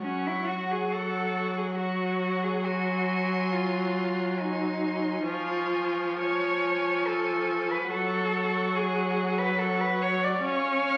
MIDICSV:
0, 0, Header, 1, 5, 480
1, 0, Start_track
1, 0, Key_signature, 3, "minor"
1, 0, Tempo, 869565
1, 18, Time_signature, 3, 2, 24, 8
1, 2417, Tempo, 878477
1, 2897, Tempo, 934579
1, 3377, Tempo, 865801
1, 3857, Tempo, 841515
1, 6090, End_track
2, 0, Start_track
2, 0, Title_t, "Violin"
2, 0, Program_c, 0, 40
2, 11, Note_on_c, 0, 85, 46
2, 479, Note_off_c, 0, 85, 0
2, 505, Note_on_c, 0, 85, 47
2, 972, Note_off_c, 0, 85, 0
2, 983, Note_on_c, 0, 85, 47
2, 1460, Note_on_c, 0, 84, 51
2, 1469, Note_off_c, 0, 85, 0
2, 2410, Note_off_c, 0, 84, 0
2, 2413, Note_on_c, 0, 84, 51
2, 2886, Note_off_c, 0, 84, 0
2, 2902, Note_on_c, 0, 85, 54
2, 3370, Note_off_c, 0, 85, 0
2, 3375, Note_on_c, 0, 85, 49
2, 4320, Note_off_c, 0, 85, 0
2, 4339, Note_on_c, 0, 85, 61
2, 5279, Note_off_c, 0, 85, 0
2, 5291, Note_on_c, 0, 85, 55
2, 5768, Note_off_c, 0, 85, 0
2, 5777, Note_on_c, 0, 85, 60
2, 6001, Note_off_c, 0, 85, 0
2, 6012, Note_on_c, 0, 89, 71
2, 6090, Note_off_c, 0, 89, 0
2, 6090, End_track
3, 0, Start_track
3, 0, Title_t, "Violin"
3, 0, Program_c, 1, 40
3, 20, Note_on_c, 1, 78, 47
3, 483, Note_off_c, 1, 78, 0
3, 508, Note_on_c, 1, 78, 43
3, 973, Note_off_c, 1, 78, 0
3, 984, Note_on_c, 1, 78, 46
3, 1460, Note_on_c, 1, 80, 52
3, 1468, Note_off_c, 1, 78, 0
3, 2407, Note_off_c, 1, 80, 0
3, 2411, Note_on_c, 1, 80, 45
3, 2885, Note_off_c, 1, 80, 0
3, 2901, Note_on_c, 1, 80, 53
3, 3369, Note_off_c, 1, 80, 0
3, 3376, Note_on_c, 1, 80, 54
3, 4321, Note_off_c, 1, 80, 0
3, 4342, Note_on_c, 1, 78, 52
3, 5280, Note_off_c, 1, 78, 0
3, 5294, Note_on_c, 1, 78, 53
3, 5770, Note_off_c, 1, 78, 0
3, 5777, Note_on_c, 1, 77, 55
3, 6090, Note_off_c, 1, 77, 0
3, 6090, End_track
4, 0, Start_track
4, 0, Title_t, "Cello"
4, 0, Program_c, 2, 42
4, 21, Note_on_c, 2, 61, 61
4, 148, Note_on_c, 2, 64, 56
4, 156, Note_off_c, 2, 61, 0
4, 266, Note_on_c, 2, 66, 60
4, 274, Note_off_c, 2, 64, 0
4, 393, Note_on_c, 2, 68, 55
4, 401, Note_off_c, 2, 66, 0
4, 509, Note_on_c, 2, 69, 65
4, 517, Note_off_c, 2, 68, 0
4, 866, Note_on_c, 2, 68, 54
4, 874, Note_off_c, 2, 69, 0
4, 982, Note_off_c, 2, 68, 0
4, 985, Note_on_c, 2, 66, 56
4, 1345, Note_on_c, 2, 68, 56
4, 1353, Note_off_c, 2, 66, 0
4, 1463, Note_on_c, 2, 66, 67
4, 1472, Note_off_c, 2, 68, 0
4, 1943, Note_on_c, 2, 65, 59
4, 1951, Note_off_c, 2, 66, 0
4, 2423, Note_on_c, 2, 63, 61
4, 2431, Note_off_c, 2, 65, 0
4, 2900, Note_off_c, 2, 63, 0
4, 2903, Note_on_c, 2, 65, 65
4, 3370, Note_off_c, 2, 65, 0
4, 3382, Note_on_c, 2, 73, 73
4, 3864, Note_on_c, 2, 69, 68
4, 3873, Note_off_c, 2, 73, 0
4, 4227, Note_on_c, 2, 71, 61
4, 4236, Note_off_c, 2, 69, 0
4, 4341, Note_off_c, 2, 71, 0
4, 4344, Note_on_c, 2, 69, 74
4, 4825, Note_on_c, 2, 68, 73
4, 4833, Note_off_c, 2, 69, 0
4, 5182, Note_on_c, 2, 71, 74
4, 5190, Note_off_c, 2, 68, 0
4, 5299, Note_on_c, 2, 69, 74
4, 5307, Note_off_c, 2, 71, 0
4, 5425, Note_on_c, 2, 71, 77
4, 5434, Note_off_c, 2, 69, 0
4, 5547, Note_on_c, 2, 73, 88
4, 5556, Note_off_c, 2, 71, 0
4, 5670, Note_on_c, 2, 74, 79
4, 5678, Note_off_c, 2, 73, 0
4, 5787, Note_on_c, 2, 73, 92
4, 5795, Note_off_c, 2, 74, 0
4, 6090, Note_off_c, 2, 73, 0
4, 6090, End_track
5, 0, Start_track
5, 0, Title_t, "Viola"
5, 0, Program_c, 3, 41
5, 17, Note_on_c, 3, 54, 57
5, 2876, Note_off_c, 3, 54, 0
5, 2900, Note_on_c, 3, 53, 52
5, 4319, Note_off_c, 3, 53, 0
5, 4340, Note_on_c, 3, 54, 65
5, 5759, Note_off_c, 3, 54, 0
5, 5780, Note_on_c, 3, 61, 71
5, 6090, Note_off_c, 3, 61, 0
5, 6090, End_track
0, 0, End_of_file